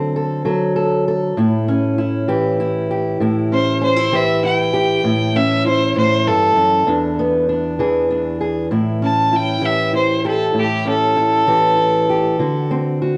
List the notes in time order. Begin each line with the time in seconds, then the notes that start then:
Already playing: D3 F#3 C4 A4
0.16 A4
0.45 F#3 A4
0.76 A4
1.08 A4
1.37 A2 E4
1.68 C#4
1.98 E4
2.28 E3 G4
2.60 E4
2.91 G4
3.20 A2 E4
3.52 C#4 C5
3.81 C#4 C5
3.96 E4
4.12 E3 G4 E5
4.44 E4 G5
4.73 G4
5.04 A2 E4
5.36 C#4 E5
5.66 E4 C5
5.97 A2 C5
6.27 G2 A4
6.56 F#2
6.87 E2 D4
7.19 B3
7.49 D4
7.79 E3 G#4
8.10 D4
8.41 G#4
8.71 A2 E4
9.02 C#4 A5
9.33 E4 G5
9.62 E3 G4
9.66 E5
9.93 E4 C5
10.25 G4 A4
10.54 A2 E4
10.60 G4
10.85 C#4 A4
11.16 E4
11.47 E3 G4
11.79 E4
12.09 G4
12.39 D3 F#4
12.71 C4
13.02 F#4